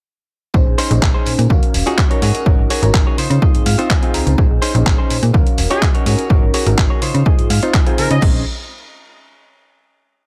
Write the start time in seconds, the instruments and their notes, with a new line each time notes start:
0.54 fm bass A#1, reed electric piano C#4 D#4 G#4 C5, kick, tambourine
0.67 fm bass A#1
0.78 clean electric guitar C#4 D#4 G#4 C5, open hi-hat, tambourine
0.90 fm bass A#1, reed electric piano C#4 D#4 G#4 C5, closed hi-hat, tambourine
1.02 muted clean electric guitar stroke, kick, clap
1.14 clean electric guitar C#4 D#4 G#4 C5
1.26 fm bass A#2, open hi-hat, tambourine
1.38 fm bass A#2, closed hi-hat, tambourine
1.50 fm bass D#2, reed electric piano C#4 F#4 A#4 F5, muted clean electric guitar stroke, kick, tambourine
1.63 closed hi-hat
1.74 fm bass D#1, open hi-hat, tambourine
1.86 reed electric piano C#4 F4 F#4 C#5, clean electric guitar D#4 F#4 G#4, closed hi-hat, tambourine
1.98 kick, clap
2.10 reed electric piano C#4 D#4 F#4 A#4, clean electric guitar D#4 F#4 C#5, closed hi-hat
2.22 fm bass G#2, clean electric guitar F#4 G#4 C#5, open hi-hat, tambourine
2.35 closed hi-hat, tambourine
2.46 fm bass G#1, reed electric piano C#4 D#4 F#4 A#4, kick
2.58 fm bass G#1
2.70 clean electric guitar F#4 G#4 C#5, open hi-hat, tambourine
2.82 fm bass G#1, reed electric piano C#4 D#4 F#4 A#4, closed hi-hat, tambourine
2.94 fm bass G#1, kick, clap
3.07 clean electric guitar F#4 G#4 C#5
3.18 fm bass C#3, clean electric guitar D#4 F4 C5, open hi-hat, tambourine
3.30 fm bass C#3, closed hi-hat, tambourine
3.42 reed electric piano C4 D#4 F4 G#4, clean electric guitar D#5, kick, tambourine
3.54 fm bass G#2, closed hi-hat
3.66 fm bass G#2, clean electric guitar F5, open hi-hat, tambourine
3.78 reed electric piano C4 D#4 F4 C5, clean electric guitar D#4 F4 C5, closed hi-hat, tambourine
3.90 clean electric guitar G#5, kick, clap
4.02 reed electric piano C4 D#4 F4 G#4, clean electric guitar D#4 F4 C5, closed hi-hat
4.14 fm bass C#2, clean electric guitar A#5, open hi-hat, tambourine
4.27 fm bass C#2, closed hi-hat, tambourine
4.38 fm bass A#1, reed electric piano C#4 D#4 G#4 C5, kick, tambourine
4.51 fm bass A#1
4.62 clean electric guitar C#4 D#4 G#4 C5, open hi-hat, tambourine
4.74 fm bass A#1, reed electric piano C#4 D#4 G#4 C5, closed hi-hat, tambourine
4.86 fm bass A#1, kick, clap
4.98 clean electric guitar C#4 D#4 G#4 C5
5.10 fm bass A#2, open hi-hat, tambourine
5.23 fm bass A#2, closed hi-hat, tambourine
5.33 fm bass D#2, reed electric piano C#4 F#4 A#4 F5, muted clean electric guitar stroke, kick
5.47 closed hi-hat
5.58 fm bass D#1, open hi-hat, tambourine
5.70 reed electric piano C#4 F4 F#4 C#5, clean electric guitar D#4 F#4 C#5, trumpet section G#4, closed hi-hat, tambourine
5.82 kick, clap
5.94 reed electric piano C#4 D#4 F#4 A#4, clean electric guitar D#4 F#4 C#5, closed hi-hat
6.06 fm bass G#2, clean electric guitar F#4 G#4 C#5, open hi-hat, tambourine
6.18 closed hi-hat, tambourine
6.29 fm bass G#1, reed electric piano C#4 D#4 F#4 A#4, kick, tambourine
6.42 fm bass G#1
6.54 clean electric guitar F#4 G#4 C#5, open hi-hat, tambourine
6.66 fm bass G#1, reed electric piano C#4 D#4 F#4 A#4, closed hi-hat, tambourine
6.78 kick, clap
6.90 clean electric guitar F#4 G#4 C#5
7.02 fm bass C#3, clean electric guitar D#4 F4 C5 C#5, open hi-hat, tambourine
7.14 fm bass C#3, closed hi-hat, tambourine
7.25 reed electric piano D#4 F4 G#4, clean electric guitar D#5, kick, tambourine
7.39 fm bass G#2, closed hi-hat
7.50 fm bass G#2, clean electric guitar F5, open hi-hat, tambourine
7.62 reed electric piano C4 D#4 F4 C5, clean electric guitar D#4 F4 C5, closed hi-hat, tambourine
7.74 clean electric guitar G#5, kick, clap
7.86 reed electric piano C4 D#4 F4 G#4, clean electric guitar D#4 F4 C5, closed hi-hat
7.98 fm bass C#3, trumpet section A#4, clean electric guitar G#5, open hi-hat, tambourine
8.10 fm bass C#3, trumpet section D#5, closed hi-hat, tambourine
8.21 fm bass A#1, reed electric piano G#3 C4 C#4 D#4, clean electric guitar C#4 D#4 G#4 C5, kick, crash